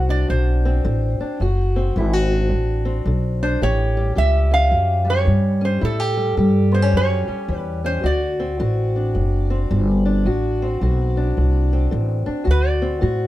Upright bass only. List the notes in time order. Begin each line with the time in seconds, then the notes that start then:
Already playing: C2
0.30 B1
0.85 A1
1.20 muted upright bass stroke
1.40 F#1
1.96 G#1
2.51 A1
3.06 B1
3.62 A1
4.17 C#2
4.72 F#2
5.27 G2
5.82 A2
6.37 G2
6.93 F#2
7.28 muted upright bass stroke
7.48 E2
8.03 D2
8.60 A1
9.15 F#1
9.71 G1
10.25 A1
10.81 B1
11.37 C2
11.92 A1
12.27 muted upright bass stroke
12.47 D2
13.03 A2